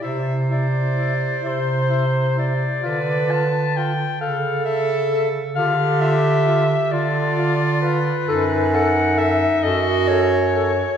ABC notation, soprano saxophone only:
X:1
M:6/8
L:1/8
Q:3/8=44
K:Ddor
V:1 name="Soprano saxophone"
e d2 c2 d- | d a g f e z | f e2 d2 B- | [K:F#dor] B f e d c2 |]